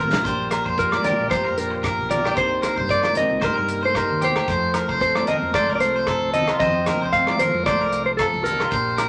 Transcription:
Already playing: C3 C4 F4 A#4
0.00 A1 G3 A3 A#4, shekere
0.13 snare, high conga, low agogo
0.25 A#1 A#2 F3 D4 F4 G4 C5, kick, shekere
0.51 A#4, cross-stick, closed hi-hat, low agogo, shekere
0.65 F2 C5, kick
0.78 F3 G3 F4 A#4, kick, shekere
0.92 D5, cross-stick, high conga, low agogo
1.04 A#3 G4 A#4 D5, closed hi-hat, low conga, shekere
1.19 A#1
1.30 G3 F4 C5, kick, cross-stick, high conga, low agogo, shekere
1.45 F2 A#4
1.58 A#2 G3 D4 A#4, closed hi-hat, shekere
1.71 muted clean electric guitar stroke
1.83 F4 A#4, kick, cross-stick, low agogo, shekere
1.99 B1
2.10 A#3 G4 A#4 D5, closed hi-hat, low conga, shekere
2.24 G4, cross-stick, low agogo
2.30 A#3 D5
2.36 C2 C3 G3 A#3 D#4 A#4 C5, kick, shekere
2.62 A#4, cross-stick, closed hi-hat, low agogo, shekere
2.76 G2 C5, kick
2.89 G3 A#3 D#4 D5, kick, shekere
3.03 D5, cross-stick, high conga, low agogo
3.15 C4 A#4 D#5, closed hi-hat, low conga, shekere
3.30 C2, high conga
3.41 G3 D#4 A#4 C5, kick, cross-stick, high conga, low agogo, shekere
3.55 G2 A#4
3.69 A#3, closed hi-hat, shekere
3.83 A3 C5
3.95 G3 D#4 A#4 C5, kick, cross-stick, low agogo, shekere
4.10 D#2
4.21 A3 G4 C5, closed hi-hat, low conga, shekere
4.36 G4 A#4, cross-stick, low agogo
4.48 F2 F3 C5, kick, shekere
4.74 A#4, cross-stick, closed hi-hat, low agogo, shekere
4.89 C2 C5, kick
5.00 A3 C4 A4 C5, kick, shekere
5.15 D5, cross-stick, high conga, low agogo
5.27 C4 A4 A#4 D#5, closed hi-hat, low conga, shekere
5.42 F2, high conga
5.54 A3 A4 C5 D5, kick, cross-stick, high conga, low agogo, shekere
5.69 C2 A#4
5.75 A#3 D5
5.80 C3 A3 F4 C5, closed hi-hat, shekere
5.96 C5
6.07 A4, kick, cross-stick, low agogo, shekere
6.21 C2
6.34 C4 A4 D#5, closed hi-hat, low conga, shekere
6.48 F4, cross-stick, low agogo
6.59 F2 F3 C4 C5 D#5, kick, low conga, shekere
6.86 A#4, cross-stick, closed hi-hat, high conga, low conga, low agogo, shekere
7.01 C2 C5
7.13 A3 C4 F5, muted clean electric guitar stroke, kick, shekere
7.27 D5, cross-stick, high conga, low agogo
7.39 A3 F4 A#4 C5, closed hi-hat, low conga, shekere
7.53 F2, high conga
7.66 A3 C5 D5, kick, cross-stick, high conga, low agogo, shekere
7.79 C2 A#4
7.92 C3 F4, closed hi-hat, shekere
8.06 A3 C5
8.17 F4 A4, kick, cross-stick, low agogo, shekere
8.21 F3
8.32 C2, high conga
8.44 G3 D4 A4 A#4, closed hi-hat, low conga, shekere
8.59 F4, cross-stick, low agogo
8.71 A#1 A#2 C5, kick, shekere
8.97 A#4, cross-stick, closed hi-hat, low agogo, shekere

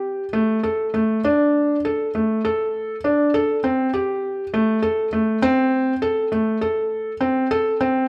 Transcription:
Already playing: G4
0.33 A3
0.63 A4
0.94 A3
1.24 D4
1.85 A4
2.15 A3
2.45 A4
3.04 D4
3.34 A4
3.64 C4
3.94 G4
4.54 A3
4.82 A4
5.13 A3
5.42 C4
6.02 A4
6.32 A3
6.61 A4
7.21 C4
7.51 A4
7.81 C4

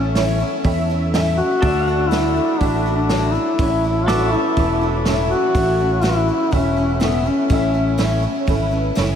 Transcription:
Already playing: A1 A3 C#4 E4 A4 C#5 E5
0.15 A2 E3 A3 C#4 E4 A4 C#5, snare, open hi-hat
0.40 A3 C#4 E4
0.64 E2 E3 A3 C#4 E4 A4 E5, kick, open hi-hat
0.89 A3 C#4 E4
1.13 A2 E3 A3 C#4 E4 A4 E5, snare, open hi-hat
1.37 A3 C#4 E4 F#4
1.62 D2 D3 A3 D4 F#4 A4 D5 E5, kick, open hi-hat
1.87 A3 D4 F#4 F#5
2.09 D3 A3 D4 E4 F#4 A4 D5, snare, open hi-hat
2.36 A3 D4 F#4
2.60 A1 D3 A3 D4 F#4 A4 E5, kick, open hi-hat
2.86 A3 D4 F#4
2.96 D4
3.09 D3 A3 D4 F#4 A4 C#5, snare, open hi-hat
3.32 D4 E4 F#4
3.36 A3
3.59 A1 A2 E3 A3 C#4 E4 A4 C#5, kick, open hi-hat
3.84 A3 C#4 E4
4.06 A2 E3 A3 C#4 E4 F#4 A4 B4 D5 E5, snare, open hi-hat
4.28 E4 C#5
4.33 A3 C#4 E4
4.56 E1 E3 A3 C#4 E4 A4 B4, kick, open hi-hat
4.81 A3 C#4 E4
5.05 A2 E3 A3 C#4 E4 A4 C#5, snare, open hi-hat
5.29 C#4 E4 F#4
5.33 A3
5.54 A1 A2 E3 A3 C#4 E4 A4 C#5, kick, open hi-hat
5.79 A3 C#4 E4
6.01 A2 E3 A3 C#4 E4 A4 B4, snare, open hi-hat
6.28 A3 C#4 E4
6.51 E1 E3 A3 C#4 E4 A4 E5, kick, open hi-hat
6.77 A3 C#4 E4
7.00 A2 E3 A3 B3 C#4 E4 A4 E5, snare, open hi-hat
7.25 A3 C#4 E4
7.49 A1 A2 E3 A3 C#4 E4 A4 E5, kick, open hi-hat
7.74 A3 C#4 E4
7.98 A2 E3 A3 C#4 E4 A4 C#5, snare, open hi-hat
8.22 A3 C#4 E4
8.47 G#1 E3 A3 C#4 E4 A4 B4, kick, open hi-hat
8.71 A3 C#4 E4
8.95 F#1 A2 E3 A3 C#4 E4 A4 C#5, snare, open hi-hat

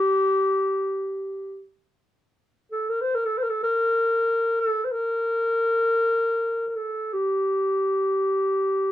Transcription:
Already playing: G4
2.72 A4
2.89 A#4
3.01 C5
3.15 A#4
3.25 A4
3.38 C5
3.43 A#4
3.49 A4
3.63 A#4
4.60 A4
4.84 C5
4.92 A#4
6.67 A#4
6.75 A4
7.13 G4

